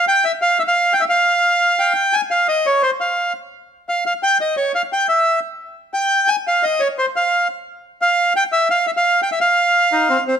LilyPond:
\new Staff \with { instrumentName = "Bandoneon" } { \time 3/4 \key f \minor \tempo 4 = 174 g''8 e''8 f''8 e''16 f''8. g''16 e''16 | f''2 g''4 | aes''8 f''8 ees''8 des''8 c''8 f''8~ | f''8 r4. f''8 f''8 |
g''8 ees''8 des''8 f''8 g''8 e''8~ | e''8 r4. g''4 | aes''8 f''8 ees''8 des''8 c''8 f''8~ | f''8 r4. f''4 |
g''8 e''8 f''8 e''16 f''8. g''16 e''16 | f''4. ees'8 c'8 c'8 | }